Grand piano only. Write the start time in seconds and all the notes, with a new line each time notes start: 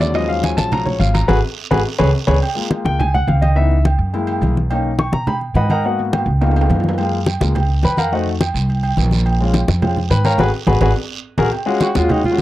Already playing: D3 F#3 G#3 C#4
0.00 D5
0.14 F3 F#3 G#3 C#4 D#5
0.29 F5
0.44 G#5
0.57 A5
0.72 A#5
0.86 C#5
1.00 F5
1.14 A#5
1.28 F#4 G#4 B4
1.71 F#4 G#4 B4
1.99 G#4 B4 C#5
2.27 G#4 B4 C#5
2.55 G#3 A#3 F4
2.85 G5
2.99 G#5
3.14 F#5
3.28 F5
3.42 D#5
3.55 E3 B3 D#4 E5
4.13 G#3 A#3 E4
4.71 A#3 C#4 D#4
4.99 C#6
5.14 A#5
5.28 B5
5.56 B4 D#5 F#5 B5
5.70 A#4 D#5 F#5 A#5
5.85 A#3 B3 F#4 B4 D#5 F#5
6.41 A#3 B3 D#4 F4
6.98 G#3 A#3 F4
7.42 G#3 A#3 F4
7.85 B4 B5
7.98 A#4 F5 F#5 A#5
8.12 A3 D#4 F#4 C5 D#5 F#5
9.40 G#3 C#4 F4
9.83 G#3 C#4 F4
10.11 B4 B5
10.25 A#4 C#5 F5 A#5
10.40 F#4 G#4 B4
10.67 F#4 G#4 B4
10.81 F#4 G#4 B4
11.38 F#4 G#4 A#4
11.66 G#3 C#4 F4 F#4
11.95 G#3 C#4 F4 F#4
12.31 G#3 C#4 F4 F#4